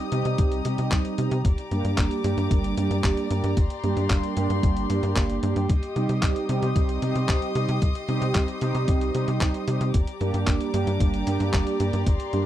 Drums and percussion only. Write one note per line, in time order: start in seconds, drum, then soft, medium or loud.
0.12 closed hi-hat medium
0.25 closed hi-hat soft
0.38 kick loud
0.38 closed hi-hat medium
0.52 closed hi-hat soft
0.65 closed hi-hat medium
0.78 closed hi-hat soft
0.92 kick loud
0.92 clap loud
0.92 closed hi-hat medium
1.05 closed hi-hat soft
1.18 closed hi-hat medium
1.31 closed hi-hat soft
1.45 kick loud
1.45 closed hi-hat medium
1.58 closed hi-hat soft
1.71 closed hi-hat soft
1.85 closed hi-hat soft
1.98 kick loud
1.98 clap loud
1.98 closed hi-hat medium
2.11 closed hi-hat soft
2.24 closed hi-hat medium
2.38 closed hi-hat soft
2.51 kick loud
2.51 closed hi-hat medium
2.64 closed hi-hat soft
2.77 closed hi-hat medium
2.91 closed hi-hat soft
3.04 kick loud
3.04 clap loud
3.04 closed hi-hat medium
3.17 closed hi-hat soft
3.31 closed hi-hat medium
3.44 closed hi-hat soft
3.57 kick loud
3.57 closed hi-hat medium
3.70 closed hi-hat soft
3.84 closed hi-hat soft
3.97 closed hi-hat soft
4.10 kick loud
4.10 clap loud
4.10 closed hi-hat medium
4.23 closed hi-hat soft
4.37 closed hi-hat medium
4.50 closed hi-hat soft
4.63 kick loud
4.63 closed hi-hat medium
4.77 closed hi-hat soft
4.90 closed hi-hat medium
5.03 closed hi-hat soft
5.16 kick loud
5.16 clap loud
5.16 closed hi-hat medium
5.30 closed hi-hat soft
5.43 closed hi-hat medium
5.56 closed hi-hat soft
5.69 kick loud
5.69 closed hi-hat medium
5.83 closed hi-hat soft
5.96 closed hi-hat soft
6.09 closed hi-hat soft
6.23 kick loud
6.23 clap loud
6.23 closed hi-hat medium
6.36 closed hi-hat soft
6.49 closed hi-hat medium
6.62 closed hi-hat soft
6.76 kick loud
6.76 closed hi-hat medium
6.89 closed hi-hat soft
7.02 closed hi-hat medium
7.16 closed hi-hat soft
7.29 kick loud
7.29 clap loud
7.29 closed hi-hat medium
7.42 closed hi-hat soft
7.55 closed hi-hat medium
7.69 closed hi-hat soft
7.82 kick loud
7.82 closed hi-hat medium
7.95 closed hi-hat soft
8.09 closed hi-hat soft
8.22 closed hi-hat soft
8.35 kick loud
8.35 clap loud
8.35 closed hi-hat medium
8.48 closed hi-hat soft
8.61 closed hi-hat medium
8.75 closed hi-hat soft
8.88 kick loud
8.88 closed hi-hat medium
9.01 closed hi-hat soft
9.15 closed hi-hat medium
9.28 closed hi-hat soft
9.41 kick loud
9.41 clap loud
9.41 closed hi-hat medium
9.54 closed hi-hat soft
9.68 closed hi-hat medium
9.81 closed hi-hat soft
9.94 kick loud
9.94 closed hi-hat loud
10.07 closed hi-hat soft
10.21 closed hi-hat soft
10.34 closed hi-hat soft
10.47 kick loud
10.47 clap loud
10.47 closed hi-hat medium
10.61 closed hi-hat soft
10.74 closed hi-hat medium
10.87 closed hi-hat soft
11.00 kick loud
11.00 closed hi-hat loud
11.14 closed hi-hat soft
11.27 closed hi-hat medium
11.40 closed hi-hat soft
11.53 kick loud
11.53 clap loud
11.53 closed hi-hat medium
11.67 closed hi-hat soft
11.80 closed hi-hat medium
11.93 closed hi-hat soft
12.06 kick loud
12.06 closed hi-hat loud
12.20 closed hi-hat soft
12.33 closed hi-hat soft